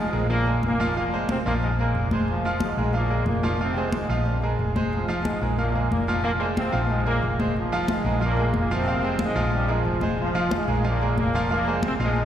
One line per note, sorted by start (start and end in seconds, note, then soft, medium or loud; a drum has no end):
0.00 0.28 G#2 medium
0.00 0.28 G#3 loud
0.13 0.59 A#1 loud
0.13 0.26 G#3 medium
0.13 0.26 G#4 medium
0.13 0.26 A#4 medium
0.13 high conga soft
0.29 0.60 A#2 medium
0.29 0.43 F3 medium
0.29 0.60 A#3 loud
0.29 0.43 F4 medium
0.29 0.43 F5 medium
0.29 high conga soft
0.47 0.74 G#3 medium
0.47 0.74 G#4 medium
0.47 0.74 A#4 medium
0.47 high conga soft
0.62 1.39 F1 medium
0.62 0.95 A#2 medium
0.62 0.95 A#3 loud
0.62 high conga medium
0.80 0.93 F3 loud
0.80 0.93 F4 medium
0.80 0.94 F5 loud
0.80 high conga soft
0.96 1.27 A#2 medium
0.96 1.10 F3 medium
0.96 1.26 A#3 loud
0.96 1.10 F4 medium
0.96 1.10 F5 medium
0.96 high conga soft
1.13 1.40 G#3 medium
1.13 1.40 G#4 medium
1.13 1.40 C5 medium
1.13 high conga soft
1.29 1.38 C3 medium
1.29 1.38 C4 medium
1.29 high conga loud
1.46 1.92 A#1 medium
1.46 1.53 A#2 medium
1.46 1.73 F3 medium
1.46 1.53 A#3 loud
1.46 1.73 F4 medium
1.46 1.73 F5 medium
1.62 1.71 G#2 medium
1.62 1.69 G#3 medium
1.62 high conga soft
1.79 2.10 A#2 medium
1.79 2.06 G#3 medium
1.79 2.09 A#3 loud
1.79 2.06 G#4 medium
1.79 2.07 A#4 medium
1.79 high conga soft
1.94 2.71 F1 loud
1.94 high conga soft
2.11 2.39 G#3 medium
2.11 2.39 G#4 medium
2.11 2.40 C5 medium
2.11 high conga medium
2.28 2.59 F3 medium
2.28 2.60 F4 medium
2.28 high conga soft
2.45 2.72 F3 medium
2.45 2.72 F4 medium
2.45 2.72 F5 medium
2.45 high conga soft
2.60 2.93 G#2 medium
2.60 2.92 G#3 medium
2.60 high conga loud
2.77 3.23 A#1 medium
2.77 2.91 G#3 medium
2.77 2.91 G#4 medium
2.77 2.92 A#4 medium
2.77 high conga soft
2.93 3.26 A#2 medium
2.93 3.07 F3 medium
2.93 3.26 A#3 loud
2.93 3.07 F4 medium
2.93 3.08 F5 medium
2.93 high conga soft
3.09 3.37 G#3 medium
3.09 3.37 G#4 medium
3.09 3.38 A#4 medium
3.09 high conga soft
3.26 4.03 F1 medium
3.26 3.58 A#2 medium
3.26 3.58 A#3 medium
3.26 high conga medium
3.43 3.57 F3 medium
3.43 3.57 F4 loud
3.43 3.57 F5 medium
3.43 high conga soft
3.60 3.92 C3 medium
3.60 3.74 F3 medium
3.60 3.92 C4 loud
3.60 3.74 F4 medium
3.60 3.74 F5 medium
3.60 high conga soft
3.77 4.04 G#3 medium
3.77 4.04 G#4 medium
3.77 4.04 C5 medium
3.77 high conga soft
3.92 4.27 G#2 medium
3.92 4.26 G#3 medium
3.92 high conga loud
4.09 4.55 A#1 loud
4.09 4.36 F3 medium
4.09 4.36 F4 medium
4.09 4.37 F5 medium
4.25 4.42 G2 medium
4.25 4.42 G3 medium
4.25 high conga soft
4.42 4.70 G#3 medium
4.42 4.70 G#4 medium
4.42 4.70 A#4 medium
4.42 high conga soft
4.59 5.36 F1 loud
4.59 high conga soft
4.76 5.02 G#3 medium
4.76 5.03 G#4 medium
4.76 5.03 C5 medium
4.76 high conga medium
4.92 5.23 F3 medium
4.92 5.23 F4 medium
4.92 high conga soft
5.08 5.35 F3 medium
5.08 5.35 F4 medium
5.08 5.36 F5 loud
5.08 high conga soft
5.24 5.56 G#2 medium
5.24 5.55 G#3 medium
5.24 high conga loud
5.41 5.87 A#1 medium
5.41 5.55 G#3 medium
5.41 5.56 G#4 medium
5.41 5.55 A#4 medium
5.41 high conga soft
5.58 5.89 A#2 medium
5.58 5.72 F3 medium
5.58 5.89 A#3 loud
5.58 5.72 F4 medium
5.58 5.72 F5 medium
5.58 high conga soft
5.75 6.02 G#3 medium
5.75 6.02 G#4 medium
5.75 6.02 A#4 medium
5.75 high conga soft
5.91 6.68 F1 medium
5.91 6.23 A#2 medium
5.91 6.22 A#3 medium
5.91 high conga medium
6.07 6.21 F3 loud
6.07 6.21 F4 loud
6.07 6.22 F5 loud
6.07 high conga soft
6.23 6.32 A#2 medium
6.23 6.37 F3 medium
6.23 6.30 A#3 loud
6.23 6.38 F4 medium
6.23 6.38 F5 medium
6.23 high conga soft
6.38 6.48 A#2 medium
6.38 6.67 G#3 medium
6.38 6.46 A#3 loud
6.38 6.67 G#4 medium
6.38 6.67 C5 medium
6.38 high conga soft
6.56 6.88 C3 medium
6.56 6.87 C4 loud
6.56 high conga medium
6.72 7.19 A#1 loud
6.72 7.00 F3 medium
6.72 7.00 F4 medium
6.72 7.00 F5 medium
6.89 7.07 G#2 medium
6.89 7.06 G#3 loud
6.89 high conga soft
7.06 7.37 A#2 medium
7.06 7.33 G#3 medium
7.06 7.37 A#3 loud
7.06 7.33 G#4 medium
7.06 7.33 A#4 medium
7.06 high conga soft
7.22 7.99 F1 medium
7.22 high conga soft
7.39 7.53 G#3 medium
7.39 7.53 G#4 medium
7.39 7.53 C5 medium
7.39 high conga medium
7.56 7.87 F3 loud
7.56 7.88 F4 medium
7.56 high conga soft
7.72 7.99 F3 loud
7.72 7.99 F4 loud
7.72 7.99 F5 loud
7.72 high conga soft
7.88 8.22 G#2 medium
7.88 8.22 G#3 loud
7.88 high conga loud
8.04 8.50 A#1 loud
8.04 8.18 G#3 medium
8.04 8.19 G#4 medium
8.04 8.19 A#4 medium
8.04 high conga soft
8.21 8.54 A#2 medium
8.21 8.35 F3 medium
8.21 8.54 A#3 loud
8.21 8.35 F4 medium
8.21 8.35 F5 medium
8.21 high conga soft
8.37 8.65 G#3 medium
8.37 8.66 G#4 medium
8.37 8.65 A#4 medium
8.37 high conga soft
8.53 9.30 F1 loud
8.53 8.71 A#2 medium
8.53 8.71 A#3 loud
8.53 high conga medium
8.71 9.21 C3 medium
8.71 8.85 F3 loud
8.71 9.22 C4 loud
8.71 8.84 F4 medium
8.71 8.85 F5 loud
8.71 high conga soft
8.87 9.01 F3 medium
8.87 9.01 F4 medium
8.87 9.01 F5 medium
8.87 high conga soft
9.03 9.31 G#3 medium
9.03 9.31 G#4 medium
9.03 9.31 C5 medium
9.03 high conga soft
9.19 9.52 G#2 medium
9.19 high conga medium
9.23 9.52 G#3 loud
9.35 9.82 A#1 loud
9.35 9.63 F3 medium
9.35 9.63 F4 medium
9.35 9.63 F5 medium
9.52 9.71 G2 medium
9.52 9.71 G3 loud
9.52 high conga soft
9.68 10.03 F3 loud
9.68 9.96 G#3 medium
9.68 10.03 F4 medium
9.68 9.96 G#4 medium
9.68 9.96 A#4 medium
9.68 high conga soft
9.85 10.62 F1 loud
9.85 high conga soft
10.01 10.29 G#3 medium
10.01 10.29 G#4 medium
10.01 10.30 C5 medium
10.01 high conga medium
10.18 10.50 F3 loud
10.18 10.50 F4 medium
10.18 high conga soft
10.35 10.62 F3 loud
10.35 10.62 F4 medium
10.35 10.62 F5 medium
10.35 high conga soft
10.51 10.85 G#2 medium
10.51 10.85 G#3 loud
10.51 high conga loud
10.68 11.14 A#1 medium
10.68 10.82 G#3 medium
10.68 10.82 G#4 medium
10.68 10.82 A#4 medium
10.68 high conga soft
10.84 11.16 A#2 medium
10.84 10.98 F3 medium
10.84 11.17 A#3 loud
10.84 10.98 F4 medium
10.84 10.98 F5 medium
10.84 high conga soft
11.01 11.29 G#3 medium
11.01 11.28 G#4 medium
11.01 11.29 A#4 medium
11.01 high conga soft
11.18 11.94 F1 medium
11.18 11.49 A#2 medium
11.18 11.49 A#3 loud
11.18 high conga medium
11.34 11.48 F3 loud
11.34 11.48 F4 loud
11.34 11.48 F5 loud
11.34 high conga soft
11.50 11.81 A#2 medium
11.50 11.64 F3 medium
11.50 11.82 A#3 loud
11.50 11.65 F4 medium
11.50 11.64 F5 medium
11.50 high conga soft
11.67 11.94 G#3 medium
11.67 11.94 G#4 medium
11.67 11.95 C5 medium
11.67 high conga soft
11.83 11.92 C3 medium
11.83 high conga loud
11.87 11.94 C4 loud
11.99 12.25 A#1 loud
11.99 12.25 G#2 medium
11.99 12.25 F3 medium
11.99 12.25 G#3 loud
11.99 12.25 F4 medium
11.99 12.25 F5 medium
12.16 high conga soft